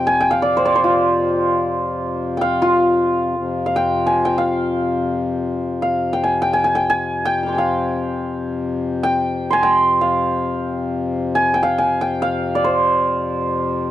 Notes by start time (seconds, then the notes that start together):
Already playing: F2 C3 C5 D5 F5 G5
0.07 G#5
0.20 G5
0.31 F5
0.42 D5
0.57 C5
0.65 D5
0.75 C5
0.84 F4
2.37 G5
2.41 F5
2.62 F4
3.36 F2 C3
3.66 F5
3.76 G5
4.06 G#5
4.25 G5
4.38 F5
5.82 F5
6.13 G5
6.24 G#5
6.42 G5
6.53 G#5
6.64 G#5
6.75 G5
6.90 G#5
7.25 G5
7.43 D6 F6
7.48 C6
7.52 G5 G#5
7.58 F5
9.03 G5
9.50 G#5 C6
9.63 G5
10.01 F5
11.35 G#5
11.54 G5
11.63 F5
11.78 G#5
12.01 G5
12.22 F5
12.55 D5
12.64 C5